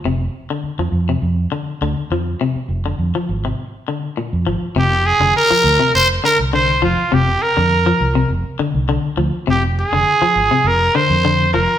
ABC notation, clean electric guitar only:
X:1
M:4/4
L:1/16
Q:1/4=102
K:Fdor
V:1 name="Clean electric guitar" clef=bass
C,2 z D,2 F,2 C,2 z D,2 D,2 F,2 | C,2 z D,2 F,2 C,2 z D,2 B,,2 F,2 | C,2 z D,2 F,2 C,2 z D,2 D,2 F,2 | C,2 z D,2 F,2 C,2 z D,2 D,2 F,2 |
C,2 z D,2 F,2 C,2 z D,2 D,2 F,2 |]